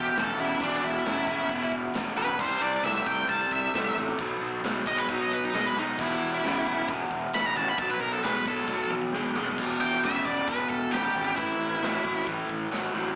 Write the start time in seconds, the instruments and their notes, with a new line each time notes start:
Already playing: overdriven electric guitar E2 B2, lead electric guitar G4
0.15 fingered electric bass E1, overdriven electric guitar E2 C#3, lead electric guitar A4, snare, open hi-hat
0.34 tonewheel organ D4 F#4 G4
0.38 fingered electric bass E1, overdriven electric guitar E2 C#3, lead electric guitar E4, open hi-hat
0.58 fingered electric bass E1, overdriven electric guitar E2 B2, tonewheel organ D4 F#4 A4, lead electric guitar D4, kick, open hi-hat
0.82 fingered electric bass E1, lead electric guitar E4, open hi-hat
1.04 fingered electric bass E1, overdriven electric guitar E2 C#3, snare, open hi-hat
1.27 fingered electric bass E1, overdriven electric guitar E2 C#3, kick, open hi-hat
1.49 fingered electric bass E1, overdriven electric guitar E2 B2, kick, open hi-hat
1.71 fingered electric bass E1, kick, open hi-hat
1.94 fingered electric bass E1, overdriven electric guitar E2 C#3, snare, open hi-hat
2.16 fingered electric bass E1, overdriven electric guitar E2 C#3, tonewheel organ D4 F#4 G4, lead electric guitar B4, snare
2.28 floor tom
2.36 fingered electric bass C2, overdriven electric guitar C3, tonewheel organ D4 E4 B4, kick, open hi-hat, crash
2.40 overdriven electric guitar G3, lead electric guitar C5
2.61 fingered electric bass C2, lead electric guitar D5, open hi-hat
2.83 fingered electric bass C2, overdriven electric guitar C3 A3, lead electric guitar E5, snare, open hi-hat
3.06 fingered electric bass C2, overdriven electric guitar C3 A3, lead electric guitar G5, kick, open hi-hat
3.29 fingered electric bass C2, overdriven electric guitar C3 G3, lead electric guitar A5, kick, open hi-hat
3.51 fingered electric bass C2, lead electric guitar E5, kick, open hi-hat
3.74 fingered electric bass C2, overdriven electric guitar C3 A3, snare, open hi-hat
3.94 fingered electric bass A1, overdriven electric guitar C3, tonewheel organ D4 E4 F#4, open hi-hat
3.98 overdriven electric guitar A3
4.16 fingered electric bass B1, overdriven electric guitar B2, tonewheel organ D#4 A4 C5, kick, open hi-hat
4.20 overdriven electric guitar F#3
4.41 fingered electric bass B1, open hi-hat
4.63 fingered electric bass B1, overdriven electric guitar B2 G#3, snare, open hi-hat
4.86 fingered electric bass B1, overdriven electric guitar B2 G#3, lead electric guitar D#5, kick, open hi-hat
4.98 lead electric guitar B4
5.08 fingered electric bass B1, overdriven electric guitar B2 F#3, lead electric guitar D#4, kick, open hi-hat
5.22 lead electric guitar D#5
5.31 fingered electric bass B1, lead electric guitar B4, kick, open hi-hat
5.44 lead electric guitar D#4
5.53 fingered electric bass B1, overdriven electric guitar B2 G#3, lead electric guitar D#5, snare, open hi-hat
5.66 lead electric guitar B4
5.76 fingered electric bass B1, overdriven electric guitar B2 G#3, tonewheel organ D#4 A4 C5, lead electric guitar D#4, open hi-hat
5.97 fingered electric bass E1, overdriven electric guitar E2 B2, lead electric guitar E4, tonewheel organ F#4 G4 D5, kick, crash
6.21 fingered electric bass E1, open hi-hat
6.44 fingered electric bass E1, overdriven electric guitar E2 C#3, snare, open hi-hat
6.66 fingered electric bass E1, overdriven electric guitar E2 C#3, kick, open hi-hat
6.88 fingered electric bass E1, overdriven electric guitar E2 B2, kick, open hi-hat
7.11 fingered electric bass E1, kick, open hi-hat
7.33 fingered electric bass E1, overdriven electric guitar E2 C#3, lead electric guitar B5, snare, open hi-hat
7.46 lead electric guitar A#5
7.55 fingered electric bass A1, overdriven electric guitar E2 C#3, tonewheel organ F#4 G4 B4, lead electric guitar A5, open hi-hat
7.69 lead electric guitar B5
7.77 fingered electric bass B1, overdriven electric guitar B2 F#3, tonewheel organ D#4 A4 C5, lead electric guitar A5, kick, open hi-hat
7.90 lead electric guitar B4
8.00 fingered electric bass B1, lead electric guitar A#4, open hi-hat
8.13 lead electric guitar A4
8.23 fingered electric bass B1, overdriven electric guitar B2 G#3, lead electric guitar B4, snare, open hi-hat
8.45 fingered electric bass B1, overdriven electric guitar B2 G#3, lead electric guitar A4, kick, open hi-hat
8.68 fingered electric bass B1, overdriven electric guitar B2 F#3, kick, snare
8.90 fingered electric bass B1, high tom
9.01 high tom
9.12 fingered electric bass B1, overdriven electric guitar B2 G#3, tonewheel organ G5, mid tom
9.34 fingered electric bass B1, overdriven electric guitar B2 G#3, tonewheel organ D#4 A4 B4 F#5, floor tom
9.47 floor tom
9.56 fingered electric bass E1, overdriven electric guitar E2 B2, tonewheel organ F#4 G4 D5, kick, crash
9.80 fingered electric bass E1, lead electric guitar G5
10.03 fingered electric bass E1, overdriven electric guitar E2 C#3, lead electric guitar E5, snare, open hi-hat
10.25 fingered electric bass E1, overdriven electric guitar E2 C#3, lead electric guitar D5, kick
10.48 fingered electric bass E1, overdriven electric guitar E2 B2, lead electric guitar B4, kick, open hi-hat
10.69 fingered electric bass E1, lead electric guitar A4, kick, snare
10.91 fingered electric bass E1, overdriven electric guitar E2 C#3, lead electric guitar G4, snare, open hi-hat
11.14 fingered electric bass G#1, overdriven electric guitar E2 C#3, tonewheel organ F#4 G4 D5
11.35 fingered electric bass A1, overdriven electric guitar A2 E3, tonewheel organ C4 G4 B4, lead electric guitar E4, kick, open hi-hat
11.59 fingered electric bass A1
11.81 fingered electric bass A1, overdriven electric guitar A2 F#3, snare, open hi-hat
12.04 fingered electric bass A1, overdriven electric guitar A2 F#3, kick
12.27 fingered electric bass A1, overdriven electric guitar A2 E3, kick, open hi-hat
12.49 fingered electric bass A1, kick
12.71 fingered electric bass A1, overdriven electric guitar A2 F#3, snare, open hi-hat
12.93 fingered electric bass A1, overdriven electric guitar A2 F#3, tonewheel organ C4 G4 C5